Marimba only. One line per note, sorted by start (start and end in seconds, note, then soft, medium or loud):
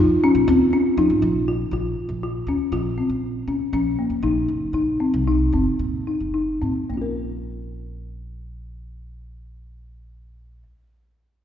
0.00 0.16 D#4 medium
0.24 0.42 C#4 medium
0.48 0.66 C4 medium
0.73 0.91 C#4 medium
0.98 1.35 D#4 medium
1.48 1.66 F4 medium
1.73 2.10 F4 medium
2.23 2.41 F4 medium
2.49 2.66 C#4 medium
2.73 2.91 F4 medium
2.98 3.35 C4 soft
3.48 3.66 C#4 medium
3.73 3.92 C#4 medium
3.99 4.17 A#3 medium
4.23 4.62 D#4 medium
4.74 4.94 D#4 medium
5.00 5.20 C4 medium
5.27 5.47 D#4 medium
5.54 5.94 C4 medium
6.07 6.28 D#4 medium
6.34 6.55 D#4 medium
6.62 6.83 C4 soft
6.90 10.62 A#3 soft
6.94 10.66 C#4 soft
6.94 10.70 F4 soft
7.01 10.74 A#4 soft